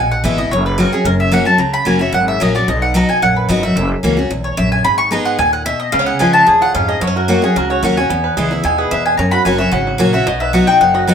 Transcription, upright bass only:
Already playing: A#1
0.24 G#1
0.51 F#1
1.05 F#1
1.58 C#2
1.86 F#1
2.12 G#1
2.41 A#1
2.68 B1
3.22 A#1
3.49 G#1
3.76 F#1
4.03 C#2
4.31 B1
4.58 A#1
4.85 G#1
5.38 D#2
5.93 C#2
6.21 C#2
6.48 D#2
6.75 F2
7.01 F#2
7.56 C#2
7.83 D#2
8.10 E2
8.37 C#2
8.64 D#2
8.91 E2
9.19 F#2
9.45 F#1
9.72 G#1
10.00 A#1
10.26 B1
10.81 F#1

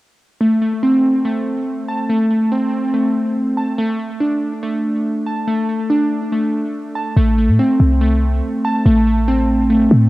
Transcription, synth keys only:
0.40 A3
0.61 A3
0.83 C4
1.25 A3
1.88 A5
2.10 A3
2.31 A3
2.52 C4
2.94 A3
3.57 A5
3.79 A3
4.00 A3
4.21 D4
4.63 A3
5.26 A5
5.47 A3
5.69 A3
5.90 D4
6.32 A3
6.95 A5
7.17 A3
7.38 A3
7.59 C4
8.01 A3
8.64 A5
8.86 A3
9.07 A3
9.28 C4
9.70 A3

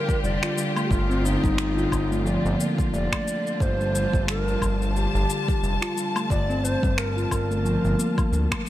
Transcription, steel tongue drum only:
0.24 G3
0.43 F4
0.57 G3
0.76 A3
1.10 C4
1.44 G3
1.77 F4
2.11 A3
2.25 F3
2.59 A#3
3.12 A3
3.79 G3
3.94 G3
4.27 G3
4.61 G3
5.62 G3
5.82 F4
5.96 G3
6.16 A3
6.49 C4
6.83 G3
7.17 F4
7.51 A3
7.65 F3
7.99 A#3
8.51 A3

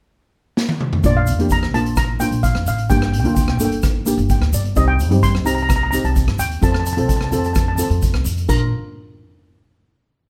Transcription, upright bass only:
1.04 A#1
1.38 F2
1.73 A#1
2.31 A#1
2.54 F2
2.66 A1
2.90 G1
3.24 D2
3.58 G1
4.17 G1
4.41 D2
4.53 G1
4.76 C2
5.10 G2
5.46 C2
6.04 C2
6.27 G2
6.38 D#2
6.62 F2
6.97 C2
7.32 F2
7.90 F2
8.14 C2
8.24 F2
8.49 A#1

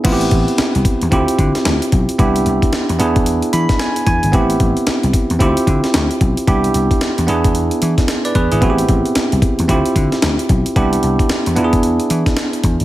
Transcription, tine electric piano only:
0.04 B3 C4 E4 F4
0.13 G4
1.11 C4 E4 F4 G4
2.18 B3 D4 E4 G4
2.98 B3 D4 E4 G#4
3.53 B5
3.80 G#5
4.07 G#5
4.32 B3 C4 E4 G4
5.39 C4 E4 F4 G4
6.47 B3 D4 E4 G4
7.27 B3 D4 E4 G#4
8.25 B4 D5
8.35 G#4 B4
8.52 E4 G#4
8.61 B3 C4 E4 F#4
8.70 G4
9.68 C4 E4 F4 G4
10.76 B3 D4 E4 G4
11.55 B3 D4 E4 F4
11.64 G#4

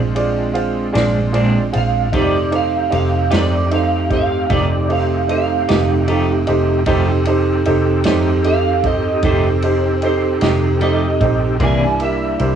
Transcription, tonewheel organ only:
Already playing: G#3 C4 D4 F4
2.12 A3 C4 D#4 G4
6.88 C4 D#4 G4 A4
11.60 G3 A#3 D4 E4

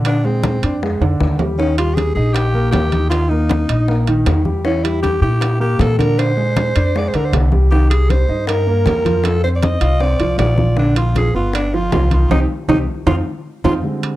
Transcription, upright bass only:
Already playing: A#2
0.63 F2
1.00 F2
1.20 D#2
2.15 A#1
2.73 D#2
3.69 A#1
4.26 E2
5.21 A#2
5.79 A#2
6.76 F2
7.14 D2
7.32 C2
8.29 G2
8.86 F2
9.81 C2
10.38 A#1
11.34 G1
11.92 C2
12.30 C2
12.68 C2
13.06 F2
13.64 F2

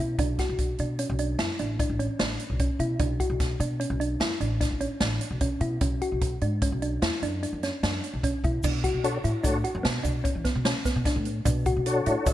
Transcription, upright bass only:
0.00 B2
0.19 B1
0.49 B1
0.79 B2
1.10 B1
1.40 F#2
1.60 A1
1.90 A1
2.20 A1
2.50 B1
2.79 B2
3.00 B1
3.30 B1
3.60 B2
3.90 B1
4.20 F#2
4.40 A1
4.71 A1
5.01 A1
5.31 B1
5.61 B2
5.81 B1
6.12 B1
6.42 G#2
6.72 B1
7.02 E2
7.22 F#2
7.53 F#2
7.83 F#2
8.14 B1
8.44 B2
8.64 B2
8.94 B2
9.24 A2
9.45 A2
9.75 F#2
9.85 B2
10.05 B2
10.35 E3
10.55 B2
10.96 B2
11.16 A2
11.46 B2
11.76 B2
12.06 A2
12.27 A2

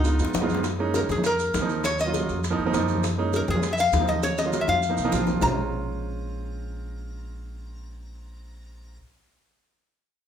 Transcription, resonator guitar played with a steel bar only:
Already playing: D#4
0.95 A#4
1.11 G#4
1.26 A#4
1.85 C#5
2.01 D#5
3.36 A#4
3.50 G#4
3.73 E5
3.80 F5
4.09 D#5
4.23 C#5
4.38 D#5
4.61 E5
4.69 F5
5.42 A#5

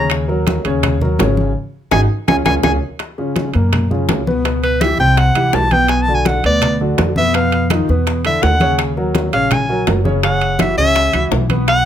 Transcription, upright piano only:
Already playing: C#3 C#4 C#5
0.28 F#3 F#4 A#4
0.65 C#3 C#4 C#5
1.02 F#3 F#4 A#4
1.20 C#3 C#4 C#5
1.92 D#4 F#4 G#4
2.28 C#4 F4 G#4
2.46 C#4 F4 G#4
2.63 C#4 F4 G#4
3.18 C#3 C#4 F4
3.55 A#2 A#3 A#4
3.91 C#3 C#4 F4
4.27 B2 B3 B4
4.45 B2 B3 B4
4.82 E3 E4 G4
5.00 C3 C4 C5
5.36 E3 E4 G4
5.72 B2 B3 B4
6.08 D3 D4 F#4
6.45 B2 B3 B4
6.81 D3 D4 F#4
7.18 B2 B3 B4
7.35 B2 B3 B4
7.71 D#3 D#4 F4
7.89 B2 B3 B4
8.25 D3 D4 E4
8.61 C#3 C#4 C#5
8.97 F#3 F#4 A#4
9.33 C#3 C#4 C#5
9.69 F#3 F#4 A#4
10.05 C#3 C#4 C#5
10.23 C#3 C#4 C#5
10.60 E3 E4 F#4
10.78 C#3 C#4 C#5
11.13 E3 E4 F#4
11.49 B2 B3 B4

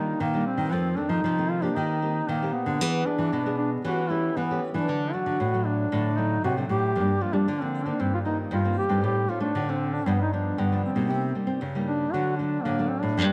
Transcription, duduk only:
Already playing: D#4
0.21 A#3
0.46 C4
0.98 D4
1.10 D#4
1.50 F4
1.63 D4
1.77 D#4
2.29 A#3
2.54 B3
3.06 D4
3.58 D4
3.85 F#4
4.10 E4
4.37 B3
4.74 D4
5.13 F#4
5.66 D4
6.18 D#4
6.44 F#4
6.69 G4
7.22 F4
7.34 D4
7.62 C4
7.86 D4
8.01 C4
8.14 F4
8.26 D#4
8.53 F4
8.78 G4
9.05 G4
9.29 F4
9.41 D4
9.70 C4
9.94 D4
10.08 B3
10.22 D#4
10.33 D4
10.59 B3
10.84 C4
11.12 C4
11.86 D4
12.12 F#4
12.37 D4
12.63 A#3
12.89 C4
13.01 D4

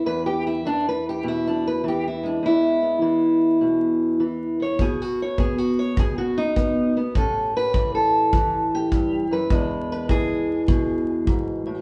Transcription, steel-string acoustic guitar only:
Already playing: E3 G#3
0.06 E2 B4
0.26 G4
0.47 E4
0.65 E3 D4
0.89 B4
1.09 G4
1.24 B2
1.28 E4
1.47 D4
1.67 B4
1.84 E3
1.88 G4
2.08 E4
2.23 G#3 D4
2.43 E2 E4
2.83 B3
3.02 E3
3.61 B2
4.20 E3
4.60 B3 C#5
4.80 B2 G#4
5.02 F#4
5.22 C#5
5.38 B3 G#4
5.58 F#4
5.79 C#5
5.97 B2 G#4
6.18 F#4
6.38 D#4
6.56 B3
6.97 B3
7.16 A2 C#4 G4 A4
7.56 G4 B4
7.75 E3
7.95 A4
8.34 E3
8.75 G4
8.93 G2
9.31 F#2 B4
9.50 E2 G#3 D4
9.92 B4
10.10 E3 G#4
10.68 B2
11.28 G#2
11.67 A2

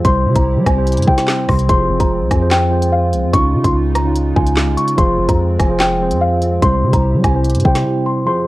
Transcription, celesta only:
0.05 C6
0.36 A#5
0.66 G#5
1.07 G5
1.49 C6
1.69 C6
2.00 A#5
2.31 G#5
2.51 G5
2.92 F5
3.33 C#6
3.64 C6
3.95 A#5
4.36 G#5
4.77 C#6
4.98 C6
5.29 A#5
5.59 G#5
5.80 G5
6.21 F5
6.62 C6
6.93 A#5
7.24 G#5
7.65 G5
8.06 C6
8.27 C6

